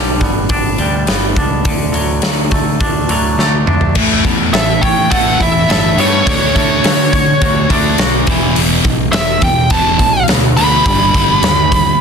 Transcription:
Already playing: picked electric bass B1, clean electric guitar G2 D3 G3 D4
0.21 picked electric bass G1, clean electric guitar B3, kick, open hi-hat
0.49 picked electric bass G1, clean electric guitar D4, kick, open hi-hat
0.78 picked electric bass D2, clean electric guitar G3, open hi-hat
1.07 picked electric bass G1, clean electric guitar B3, snare, open hi-hat
1.36 picked electric bass C#2, clean electric guitar D4, kick, open hi-hat
1.65 picked electric bass D2, clean electric guitar D3, kick, open hi-hat
1.92 picked electric bass D2, clean electric guitar F#3, open hi-hat
2.22 picked electric bass D2, clean electric guitar F#3, snare, open hi-hat
2.51 picked electric bass D2, clean electric guitar A3, kick, open hi-hat
2.80 picked electric bass D2, clean electric guitar D4, kick, open hi-hat
3.09 picked electric bass D2, clean electric guitar F#3, open hi-hat
3.38 picked electric bass D2, clean electric guitar A3, snare
3.66 picked electric bass D2, clean electric guitar D4, mid tom
3.81 floor tom
3.95 picked electric bass A1, distorted electric guitar A2 E3 A3, clean electric guitar A3, kick, crash
4.24 picked electric bass E2, distorted electric guitar A2 E3, clean electric guitar B3, kick, open hi-hat
4.53 picked electric bass A1, distorted electric guitar A2 E3, clean electric guitar A4, lead electric guitar E5, snare, open hi-hat
4.82 picked electric bass A2, distorted electric guitar A2 E3, clean electric guitar C#5, lead electric guitar G5, kick, open hi-hat
5.10 picked electric bass A1, distorted electric guitar A2 E3 A3, clean electric guitar A4, lead electric guitar F#5, kick, open hi-hat
5.40 picked electric bass E1, distorted electric guitar A2 E3, clean electric guitar E4, lead electric guitar E5, kick, open hi-hat
5.68 picked electric bass G1, distorted electric guitar A2 E3, clean electric guitar A4, lead electric guitar E5, snare, open hi-hat
5.97 picked electric bass G2, distorted electric guitar A2 E3 A3, clean electric guitar B3, lead electric guitar C#5, open hi-hat
6.26 picked electric bass D2, distorted electric guitar D3 A3 D4, clean electric guitar D3, kick, open hi-hat
6.55 picked electric bass D2, distorted electric guitar D3 A3 D4, clean electric guitar A3, kick, open hi-hat
6.84 distorted electric guitar D3 A3, picked electric bass D3, clean electric guitar F#4, snare, open hi-hat
7.12 distorted electric guitar D3 A3, clean electric guitar C#5, kick, open hi-hat
7.42 picked electric bass D2, distorted electric guitar D3 A3, clean electric guitar F#4, kick, open hi-hat
7.70 picked electric bass D2, distorted electric guitar D3 A3 D4, clean electric guitar D4, kick, open hi-hat
7.98 picked electric bass B1, distorted electric guitar D3 A3, clean electric guitar F#4, snare, open hi-hat
8.27 picked electric bass E1, distorted electric guitar E2 B2 E3, clean electric guitar E3, kick, open hi-hat
8.56 picked electric bass E1, distorted electric guitar E2 B2 E3, open hi-hat
8.84 picked electric bass B1, distorted electric guitar E2 B2, kick, open hi-hat
9.12 picked electric bass E1, distorted electric guitar E2 B2, lead electric guitar E5, snare, open hi-hat
9.42 picked electric bass E2, distorted electric guitar E2 B2, lead electric guitar G5, kick, open hi-hat
9.70 picked electric bass E1, distorted electric guitar E2 B2 E3, lead electric guitar A5, kick, open hi-hat
9.99 picked electric bass B1, distorted electric guitar E2 B2, kick, open hi-hat
10.28 picked electric bass D2, distorted electric guitar E2 B2, snare, open hi-hat
10.56 picked electric bass D2, distorted electric guitar E2 B2 E3, lead electric guitar B5, open hi-hat
10.85 picked electric bass G1, distorted electric guitar G2 D3 G3, kick, open hi-hat
11.14 picked electric bass G1, distorted electric guitar G2 D3 G3, kick, open hi-hat
11.42 picked electric bass D#2, distorted electric guitar G2 D3, snare, open hi-hat
11.72 distorted electric guitar G2 D3, kick, open hi-hat

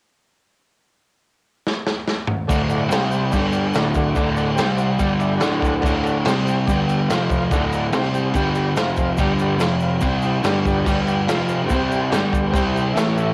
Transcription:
1.67 snare
1.87 snare
2.08 snare
2.27 mid tom
2.47 overdriven electric guitar D2 A2 D3, transistor combo organ A4 D5 F#5, kick, crash, shaker
2.69 transistor combo organ A4 D5 F#5, crash, shaker
2.90 overdriven electric guitar C3 G3 C4, transistor combo organ G4 C5 G5, snare, crash, shaker
3.10 transistor combo organ G4 C5 G5, crash, shaker
3.30 overdriven electric guitar G2, transistor combo organ G4 D5 G5, kick, crash, shaker
3.35 overdriven electric guitar D3 G3
3.52 transistor combo organ G4 D5 G5, crash, shaker
3.73 overdriven electric guitar D2 A2 D3, transistor combo organ A4 D5 F#5, snare, crash, shaker
3.94 transistor combo organ A4 D5 F#5, kick, crash, shaker
4.15 overdriven electric guitar D2 A2 D3, transistor combo organ A4 D5 F#5, kick, crash, shaker
4.36 transistor combo organ A4 D5 F#5, crash, shaker
4.55 overdriven electric guitar C3, transistor combo organ G4 C5 G5, snare, crash, shaker
4.60 overdriven electric guitar G3 C4
4.77 transistor combo organ G4 C5 F#5, crash, shaker
4.98 overdriven electric guitar G2 D3 G3, transistor combo organ G4 D5 G5, kick, crash, shaker
5.20 transistor combo organ G4 D5 E5, crash, shaker
5.38 overdriven electric guitar D2, transistor combo organ A4 D5 F#5, snare, crash, shaker
5.42 overdriven electric guitar A2 D3
5.59 transistor combo organ A4 D5 F#5, kick, crash
5.64 shaker
5.80 transistor combo organ A4 D5 F#5, kick, crash
5.84 overdriven electric guitar D2 A2 D3, shaker
6.03 transistor combo organ A4 D5 F#5, crash, shaker
6.25 overdriven electric guitar C3 G3 C4, transistor combo organ G4 C5 G5, snare, crash, shaker
6.45 transistor combo organ G4 C5 G5, crash, shaker
6.67 overdriven electric guitar G2 D3 G3, transistor combo organ G4 D5 G5, kick, crash, shaker
6.88 transistor combo organ G4 D5 G5, crash, shaker
7.08 overdriven electric guitar F2 C3 F3, transistor combo organ F4 C5 F5, snare, crash, shaker
7.29 transistor combo organ F4 C5 F5, kick, crash, shaker
7.51 overdriven electric guitar D2 A2 D3, transistor combo organ A4 D5 F#5, kick, crash, shaker
7.72 transistor combo organ A4 D5 F#5, crash, shaker
7.92 overdriven electric guitar C3 G3 C4, transistor combo organ C5 G5, snare, crash, shaker
7.96 transistor combo organ G4
8.14 transistor combo organ G4 C5 G5, crash, shaker
8.34 overdriven electric guitar G2 D3 G3, transistor combo organ G4 D5 G5, kick, crash, shaker
8.55 transistor combo organ G4 D5 G5, crash, shaker
8.76 overdriven electric guitar F2 C3 F3, transistor combo organ F4 C5 F5, snare, crash, shaker
8.96 transistor combo organ F4 C5 F5, kick, crash, shaker
9.17 overdriven electric guitar G2 D3 G3, transistor combo organ G4 D5 G5, kick, crash, shaker
9.39 transistor combo organ G4 D5 G5, crash, shaker
9.59 overdriven electric guitar F2 C3 F3, transistor combo organ F4 C5 F5, snare, crash, shaker
9.80 transistor combo organ F4 F5, crash, shaker
9.84 transistor combo organ C5
10.01 overdriven electric guitar C3 G3 C4, transistor combo organ G4 C5 G5, kick, crash, shaker
10.22 transistor combo organ G4 C5, crash, shaker
10.26 transistor combo organ G5
10.43 overdriven electric guitar G2 D3 G3, snare, crash, shaker
10.47 transistor combo organ G4 D5 G5
10.65 transistor combo organ G4 D5 G5, kick, crash, shaker
10.86 overdriven electric guitar G2 D3 G3, transistor combo organ G4 D5 G5, kick, crash, shaker
11.07 transistor combo organ G4 D5 G5, crash, shaker
11.27 overdriven electric guitar F2 C3 F3, transistor combo organ F4 C5 F5, snare, crash, shaker
11.46 transistor combo organ F4 C5 F5, crash, shaker
11.66 overdriven electric guitar C3, transistor combo organ G4 C5 G5, kick, crash, shaker
11.71 overdriven electric guitar G3 C4
11.88 transistor combo organ G4 C5 G5, crash, shaker
12.10 overdriven electric guitar G2 D3 G3, transistor combo organ G4 D5 G5, snare, crash, shaker
12.32 transistor combo organ G4 D5 G5, kick, crash, shaker
12.50 overdriven electric guitar C3 G3, transistor combo organ G4 C5 G5, kick, crash
12.55 overdriven electric guitar C4, shaker
12.73 transistor combo organ G4 C5 G5, crash, shaker
12.93 overdriven electric guitar A2 E3 A3, transistor combo organ E4 A4 E5, crash
12.97 snare, shaker
13.16 transistor combo organ E4 A4 E5, crash, shaker

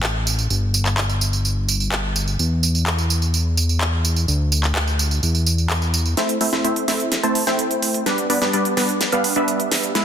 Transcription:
Already playing: analog synth bass A1
0.03 clap, tambourine
0.27 tambourine
0.39 tambourine
0.50 analog synth bass G1, tambourine
0.74 tambourine
0.86 clap, tambourine
0.98 clap, tambourine
1.10 tambourine
1.21 tambourine
1.33 tambourine
1.45 tambourine
1.69 tambourine
1.80 tambourine
1.92 clap, tambourine
2.16 tambourine
2.28 tambourine
2.39 analog synth bass E2, tambourine
2.63 tambourine
2.75 tambourine
2.87 clap, tambourine
2.98 tambourine
3.10 tambourine
3.22 tambourine
3.34 tambourine
3.57 tambourine
3.69 tambourine
3.81 clap, tambourine
4.05 tambourine
4.16 tambourine
4.28 analog synth bass D2, tambourine
4.52 tambourine
4.64 clap, tambourine
4.75 clap, tambourine
4.87 tambourine
4.99 tambourine
5.11 tambourine
5.23 analog synth bass E2, tambourine
5.35 tambourine
5.46 tambourine
5.58 tambourine
5.70 clap, tambourine
5.82 tambourine
5.94 tambourine
6.06 tambourine
6.17 supersaw synth A3 C4 E4 C5 E5, snare, closed hi-hat
6.29 closed hi-hat
6.41 supersaw synth A3 C4 E4 C5 E5, open hi-hat
6.53 supersaw synth A3 C4 E4 C5 E5, snare, closed hi-hat
6.64 supersaw synth A3 C4 E4 C5 E5, closed hi-hat
6.76 closed hi-hat
6.88 supersaw synth A3 C4 E4 C5 E5, snare, open hi-hat
7.00 closed hi-hat
7.12 snare, closed hi-hat
7.23 supersaw synth A3 C4 E4 C5 A5, closed hi-hat
7.35 open hi-hat
7.47 supersaw synth A3 C4 E4 C5 G5, snare, closed hi-hat
7.59 closed hi-hat
7.71 closed hi-hat
7.82 open hi-hat
7.94 closed hi-hat
8.06 supersaw synth G3 B3 D4 B4 D5, snare, closed hi-hat
8.18 closed hi-hat
8.30 supersaw synth G3 B3 D4 B4 D5, open hi-hat
8.42 supersaw synth G3 B3 D4 B4 D5, snare, closed hi-hat
8.53 supersaw synth G3 B3 D4 B4 D5, closed hi-hat
8.65 closed hi-hat
8.77 supersaw synth G3 B3 D4 B4 D5, snare, open hi-hat
8.89 closed hi-hat
9.01 snare, closed hi-hat
9.12 supersaw synth G3 B3 D4 B4 F5, closed hi-hat
9.24 open hi-hat
9.36 supersaw synth G3 B3 D4 B4 E5, closed hi-hat
9.48 closed hi-hat
9.60 closed hi-hat
9.71 snare, open hi-hat
9.83 closed hi-hat
9.95 supersaw synth G#3 B3 E4 B4 E5, snare, closed hi-hat

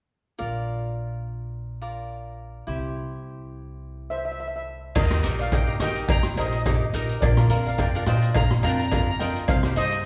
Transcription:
0.38 upright bass A#1, cavaquinho F4 A#4 D5
1.82 cavaquinho F4 A#4 D5
2.67 upright bass C2, cavaquinho E4 G4 C5
4.10 steel pan C5 E5
4.18 steel pan E5
4.25 steel pan E5
4.32 steel pan E5
4.40 steel pan E5
4.48 steel pan E5
4.56 steel pan E5
4.95 upright bass D#2, steel pan A#4 D#5, kick, crash, cowbell
5.10 cavaquinho D#4 G4 A#4, cross-stick
5.23 upright bass A#1, cavaquinho D#4 G4 A#4, closed hi-hat
5.39 steel pan D5 F5, closed hi-hat
5.51 cavaquinho D#4 G4 A#4, steel pan D#5 G5, kick, closed hi-hat, cowbell
5.67 cavaquinho D#4 G4 A#4
5.80 upright bass D#3, cavaquinho D#4 G4 A#4, steel pan D#5, cross-stick, closed hi-hat
5.84 steel pan G5
5.95 closed hi-hat
6.08 steel pan G5 A#5, kick, closed hi-hat, cowbell
6.23 cross-stick
6.36 upright bass A#1, cavaquinho D#4 G4 A#4, steel pan C5 D#5, closed hi-hat, cowbell
6.47 steel pan D#5
6.52 steel pan D#5, closed hi-hat
6.64 cavaquinho D#4 G4 A#4, steel pan D#5, kick, closed hi-hat, cowbell
6.70 steel pan D#5
6.79 steel pan D#5
6.86 steel pan D#5
6.93 upright bass A#1, cavaquinho D#4 G4 A#4, closed hi-hat
7.09 closed hi-hat
7.21 upright bass A#1, steel pan A#4 D5, kick, closed hi-hat, cowbell
7.37 cavaquinho D4 F4 A#4, cross-stick
7.49 upright bass F2, cavaquinho D4 F4 A#4, closed hi-hat
7.66 steel pan D5 F5, closed hi-hat
7.78 cavaquinho D4 F4 A#4, steel pan D5 G5, kick, closed hi-hat, cowbell
7.95 cavaquinho D4 F4 A#4
8.06 upright bass A#2, cavaquinho D4 F4 C5, steel pan D#5 G5, cross-stick, closed hi-hat
8.22 closed hi-hat
8.34 steel pan F5 A#5, kick, closed hi-hat, cowbell
8.50 cross-stick
8.63 upright bass F2, cavaquinho D4 F4 A#4, steel pan G5 A#5, closed hi-hat, cowbell
8.72 steel pan A#5
8.79 steel pan A#5, closed hi-hat
8.86 steel pan A#5
8.91 cavaquinho D4 F4 A#4, steel pan A#5, kick, closed hi-hat, cowbell
9.02 steel pan A#5
9.09 steel pan A#5
9.19 upright bass F2, cavaquinho D4 F4 A#4, steel pan D#5 G5, closed hi-hat
9.36 closed hi-hat
9.48 upright bass C2, steel pan C5 F5, kick, closed hi-hat, cowbell
9.63 cavaquinho D#4 G4 C5, cross-stick
9.76 upright bass G2, cavaquinho D#4 G4 C5, steel pan C5 D#5, closed hi-hat
9.91 closed hi-hat

